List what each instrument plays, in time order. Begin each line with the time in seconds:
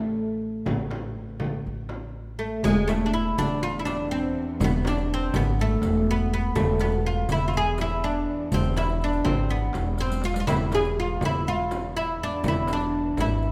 Already playing: upright bass A1, oud A3
0.42 darbuka ka
0.66 upright bass A1, darbuka dum, frame drum
0.91 darbuka tek, frame drum
1.16 darbuka ka
1.40 frame drum, darbuka dum
1.53 darbuka ka
1.65 upright bass A1, darbuka ka
1.89 darbuka tek, frame drum
2.27 darbuka ka
2.39 oud A3
2.63 upright bass E1, cello section E2, oud G#3, riq, darbuka dum, frame drum
2.77 darbuka ka
2.88 oud A3, riq, darbuka tek, frame drum
3.06 oud D4
3.13 oud E4
3.38 upright bass E1, oud D4, riq, frame drum, darbuka dum
3.63 oud F4, riq
3.79 oud E4
3.85 oud D4, riq, darbuka tek, frame drum
4.11 oud C4
4.36 darbuka ka
4.60 upright bass E1, riq, frame drum, darbuka dum
4.64 oud B3
4.73 darbuka ka
4.85 oud D4, riq, darbuka tek, frame drum
4.98 riq
5.14 oud C4
5.34 upright bass G#1, oud B3, riq, frame drum, darbuka dum
5.59 oud A3, riq
5.82 upright bass E1, riq, darbuka tek, frame drum
6.11 oud B3
6.34 oud B3
6.55 upright bass E1, cello section E2, oud A3, riq, frame drum, darbuka dum
6.79 oud B3, riq, darbuka tek, frame drum
6.92 riq
7.06 oud F4
7.29 upright bass E1, oud E4, riq, darbuka dum, frame drum
7.48 oud F4
7.54 oud G#4, riq
7.78 oud E4, riq, darbuka tek, frame drum
8.04 oud D4
8.27 darbuka ka
8.52 upright bass E1, oud C4, riq, frame drum, darbuka dum
8.64 riq
8.76 oud E4, riq, darbuka tek, frame drum
8.89 riq, darbuka ka
9.01 oud D4, riq
9.13 riq, darbuka ka
9.25 upright bass G#1, oud C4, frame drum, darbuka dum
9.49 oud B3, riq
9.73 upright bass E1, riq, darbuka tek, frame drum
9.98 oud C4, riq, darbuka tek
10.10 riq, darbuka ka
10.22 oud F4, riq, darbuka tek
10.34 riq, darbuka ka
10.40 oud F4
10.47 upright bass E1, cello section E2, oud E4, riq, darbuka dum, frame drum
10.59 darbuka ka
10.72 oud G#4, riq, darbuka tek, frame drum
10.85 riq
11.00 oud F4
11.21 upright bass E1, riq, frame drum, darbuka dum
11.25 oud E4
11.47 oud F4, riq
11.71 riq, darbuka tek, frame drum
11.97 oud E4
12.20 oud D4, darbuka ka
12.43 upright bass E1, riq, darbuka dum, frame drum
12.48 oud E4
12.67 riq, darbuka tek, frame drum
12.73 oud D4
12.81 riq
13.17 upright bass G#1, oud E4, riq, frame drum
13.42 riq